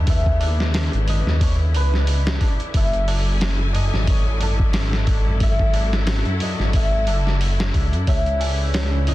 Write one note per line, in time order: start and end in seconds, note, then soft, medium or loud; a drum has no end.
0.00 0.89 D#2 medium
0.00 2.70 C#3 medium
0.00 2.70 B3 medium
0.00 9.14 E4 medium
0.00 2.00 A4 medium
0.00 1.29 C#5 medium
0.00 0.15 D#5 medium
0.07 1.15 E5 medium
0.07 kick loud
0.07 open hi-hat medium
0.07 tabla na soft
0.26 kick medium
0.26 tabla na soft
0.40 open hi-hat medium
0.40 tabla na medium
0.59 snare medium
0.59 tabla na soft
0.74 snare loud
0.74 open hi-hat medium
0.74 tabla na medium
0.93 1.22 G#1 medium
0.93 closed hi-hat soft
1.07 1.18 D#5 medium
1.07 open hi-hat medium
1.07 tabla na loud
1.07 tabla ge medium
1.26 1.76 D#2 medium
1.26 snare soft
1.26 tabla na soft
1.40 1.51 C#5 medium
1.40 kick loud
1.40 open hi-hat medium
1.40 tabla na medium
1.74 2.38 C#2 medium
1.74 4.49 B4 loud
1.74 open hi-hat medium
1.74 tabla na loud
1.92 snare soft
1.92 tabla na soft
2.07 open hi-hat medium
2.07 tabla na medium
2.27 snare loud
2.41 kick medium
2.41 open hi-hat medium
2.41 tabla na medium
2.59 closed hi-hat soft
2.59 tabla na soft
2.74 3.89 F#1 loud
2.74 8.04 F#3 medium
2.74 8.04 A4 loud
2.74 3.81 E5 medium
2.74 5.38 G#5 medium
2.74 kick loud
2.74 open hi-hat medium
2.74 tabla na medium
2.93 closed hi-hat soft
2.93 tabla na soft
3.08 open hi-hat medium
3.08 tabla na loud
3.27 tabla na soft
3.41 snare loud
3.41 open hi-hat medium
3.41 tabla na soft
3.73 5.49 D#5 medium
3.73 open hi-hat medium
3.73 tabla na medium
3.73 tabla ge medium
3.93 6.23 G#1 medium
3.93 snare soft
3.93 tabla na soft
4.07 6.65 C#5 medium
4.07 kick loud
4.07 open hi-hat loud
4.07 tabla na medium
4.40 7.08 A4 medium
4.40 open hi-hat medium
4.40 tabla na medium
4.40 tabla ge medium
4.59 kick medium
4.59 tabla na soft
4.73 snare loud
4.73 open hi-hat medium
4.73 tabla na medium
4.93 snare medium
5.06 kick medium
5.06 open hi-hat medium
5.06 tabla na loud
5.26 tabla na soft
5.26 tabla ge medium
5.40 8.05 F#4 medium
5.40 6.48 E5 medium
5.40 kick loud
5.40 open hi-hat medium
5.40 tabla na soft
5.59 kick medium
5.59 tabla na soft
5.74 open hi-hat medium
5.74 tabla na medium
5.93 snare medium
5.93 tabla na soft
6.07 snare loud
6.07 open hi-hat medium
6.07 tabla na medium
6.25 6.55 F#2 medium
6.25 closed hi-hat soft
6.40 6.82 D#5 medium
6.40 open hi-hat medium
6.40 tabla na medium
6.40 tabla ge medium
6.59 7.09 G#1 medium
6.59 snare soft
6.59 tabla na soft
6.73 8.08 E5 loud
6.73 kick loud
6.73 open hi-hat medium
6.73 tabla na medium
7.07 7.71 F#1 medium
7.07 9.14 A4 loud
7.07 open hi-hat medium
7.07 tabla na medium
7.27 snare soft
7.27 tabla na soft
7.41 open hi-hat medium
7.41 tabla na medium
7.60 snare loud
7.74 7.94 C#2 medium
7.74 kick medium
7.74 open hi-hat medium
7.74 tabla na medium
7.92 8.06 F#2 medium
7.92 closed hi-hat soft
7.92 tabla na soft
8.07 9.14 C#2 loud
8.07 9.14 C#3 medium
8.07 9.14 B3 medium
8.07 9.14 C#4 medium
8.07 8.38 C#5 medium
8.07 9.14 E5 medium
8.07 kick loud
8.07 open hi-hat medium
8.07 tabla na soft
8.26 closed hi-hat soft
8.26 tabla na soft
8.40 8.71 G#5 loud
8.40 open hi-hat medium
8.40 tabla na medium
8.60 tabla na soft
8.74 9.05 C#5 medium
8.74 snare loud
8.74 open hi-hat medium
8.74 tabla na medium
9.07 9.14 E4 medium
9.07 9.14 D#5 medium
9.07 open hi-hat medium
9.07 tabla na medium
9.07 tabla ge medium